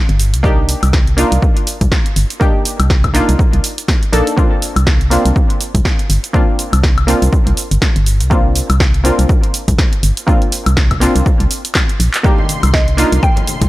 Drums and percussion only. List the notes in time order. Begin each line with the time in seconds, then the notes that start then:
0.09 closed hi-hat
0.20 open hi-hat, shaker
0.34 closed hi-hat, shaker
0.44 kick, shaker
0.69 open hi-hat, shaker
0.83 closed hi-hat, high woodblock, shaker
0.93 kick, snare, shaker
1.07 closed hi-hat
1.18 open hi-hat, shaker
1.32 closed hi-hat, shaker
1.42 kick, shaker
1.57 closed hi-hat
1.67 open hi-hat, shaker
1.81 kick, closed hi-hat, shaker
1.92 kick, snare, shaker
2.06 closed hi-hat
2.16 open hi-hat, shaker
2.30 closed hi-hat, shaker
2.41 kick, shaker
2.65 open hi-hat, shaker
2.80 closed hi-hat, high woodblock, shaker
2.90 kick, snare, shaker
3.04 kick, closed hi-hat, high woodblock
3.15 snare, open hi-hat, shaker
3.29 closed hi-hat, shaker
3.39 kick, shaker
3.53 closed hi-hat
3.64 open hi-hat, shaker
3.78 closed hi-hat, shaker
3.88 kick, snare, open hi-hat, shaker
4.03 closed hi-hat
4.13 open hi-hat, shaker
4.27 closed hi-hat, shaker
4.38 kick, shaker
4.62 open hi-hat, shaker
4.76 closed hi-hat, high woodblock, shaker
4.87 kick, snare, shaker
5.01 closed hi-hat
5.11 open hi-hat, shaker
5.26 closed hi-hat, shaker
5.36 kick, shaker
5.50 closed hi-hat
5.61 open hi-hat, shaker
5.75 kick, closed hi-hat, shaker
5.85 kick, snare, shaker
5.99 closed hi-hat
6.10 open hi-hat, shaker
6.24 closed hi-hat, shaker
6.34 kick, shaker
6.59 open hi-hat, shaker
6.73 closed hi-hat, high woodblock, shaker
6.83 kick, snare, shaker
6.98 closed hi-hat, high woodblock
7.08 snare, open hi-hat, shaker
7.22 closed hi-hat, shaker
7.33 kick, shaker
7.47 closed hi-hat
7.57 open hi-hat, shaker
7.71 closed hi-hat, shaker
7.82 kick, snare, open hi-hat, shaker
7.96 closed hi-hat
8.06 open hi-hat, shaker
8.21 closed hi-hat, shaker
8.31 kick, shaker
8.56 open hi-hat, shaker
8.70 closed hi-hat, high woodblock, shaker
8.80 kick, snare, shaker
8.94 closed hi-hat
9.05 open hi-hat, shaker
9.19 closed hi-hat, shaker
9.29 kick, shaker
9.44 closed hi-hat
9.54 open hi-hat, shaker
9.68 kick, closed hi-hat, shaker
9.79 kick, snare, shaker
9.93 closed hi-hat
10.03 open hi-hat, shaker
10.17 closed hi-hat, shaker
10.28 kick, shaker
10.42 closed hi-hat
10.52 open hi-hat, shaker
10.66 closed hi-hat, high woodblock, shaker
10.77 kick, snare, shaker
10.91 kick, closed hi-hat, high woodblock
11.01 snare, open hi-hat, shaker
11.16 closed hi-hat, shaker
11.26 kick, shaker
11.40 closed hi-hat
11.51 open hi-hat, shaker
11.65 closed hi-hat, shaker
11.75 kick, snare, clap, open hi-hat, shaker
11.89 closed hi-hat
12.00 open hi-hat, shaker
12.14 clap, closed hi-hat, shaker
12.24 kick, high bongo, shaker
12.38 low conga
12.49 open hi-hat, high conga, shaker
12.63 closed hi-hat, high conga, high woodblock, shaker
12.74 kick, snare, high bongo, shaker
12.88 closed hi-hat
12.98 open hi-hat, shaker
13.12 closed hi-hat, high bongo, shaker
13.23 kick, shaker
13.36 closed hi-hat, low conga
13.47 open hi-hat, high conga, shaker
13.61 kick, closed hi-hat, high bongo, high conga, shaker